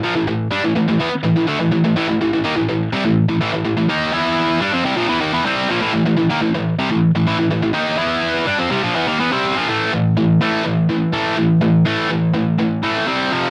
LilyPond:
\new Staff \with { instrumentName = "Distorted electric guitar" } { \clef bass \time 4/4 \key a \minor \tempo 4 = 124 <bes, f>16 <a, e>16 <a, e>8 <g d'>16 <a, e>16 <a, e>16 <a, e>16 <e b>16 r16 <a, e>16 <a, e>16 <d a>16 <a, e>16 <a, e>16 <a, e>16 | <a, e>16 <a, e>16 <a, e>16 <a, e>16 <dis bes>16 <a, e>16 <a, e>8 <c g>16 <a, e>8 <a, e>16 <a, e>16 <a, e>16 <a, e>16 <a, e>16 | <dis bes dis'>8 <e b e'>4 <g d'>16 <f c'>16 <c g>16 <bes, f>16 <e b>16 <dis bes>16 <e b>16 <c g c'>8 <bes, f>16 | <a, e>16 <a, e>16 <a, e>16 <a, e>16 <dis bes>16 <a, e>16 <a, e>8 <c g>16 <a, e>8 <a, e>16 <a, e>16 <a, e>16 <a, e>16 <a, e>16 |
<dis bes dis'>8 <e b e'>4 <g d'>16 <f c'>16 <c g>16 <bes, f>16 <e b>16 <dis bes>16 <e b>16 <c g c'>8 <bes, f>16 | <a, e a>8 <a, e>8 <a, e>8 <a, e a>8 <a, e>8 <a, e>8 <a, e a>8 <a, e>8 | <a, e>8 <a, e a>8 <a, e>8 <a, e>8 <a, e>8 <a, e a>8 <c g c'>8 <f, c f>8 | }